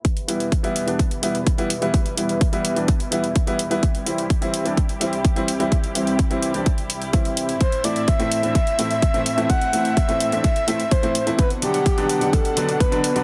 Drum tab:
HH |xxxxxxxxxxxxxxxx|xxxxxxxxxxxxxxxx|xxxxxxxxxxxxxxxx|xxxxxxxxxxxxxxxx|
BD |o---o---o---o---|o---o---o---o---|o---o---o---o---|o---o---o---o---|

HH |xxxxxxxxxxxxxxxx|xxxxxxxxxxxxxxxx|xxxxxxxxxxxxxxxx|
BD |o---o---o---o---|o---o---o---o---|o---o---o---o---|